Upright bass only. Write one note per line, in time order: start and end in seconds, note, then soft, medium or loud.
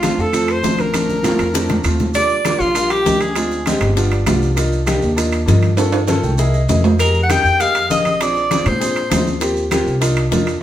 0.00 0.12 A#1 medium
0.18 0.60 F2 medium
0.63 1.34 A#1 medium
1.39 1.81 F2 medium
1.84 2.55 D#2 medium
2.59 3.02 A#1 loud
3.05 3.75 D2 medium
3.81 4.23 G1 loud
4.26 4.97 C2 medium
5.02 5.45 D#2 loud
5.47 6.18 G2 medium
6.23 6.66 C2 medium
6.68 7.39 F2 medium
7.44 7.87 F2 medium
7.90 8.60 A#1 medium
8.66 9.08 A#2 loud
9.11 9.81 D#2 medium
9.86 10.29 C2 medium
10.31 10.60 F2 medium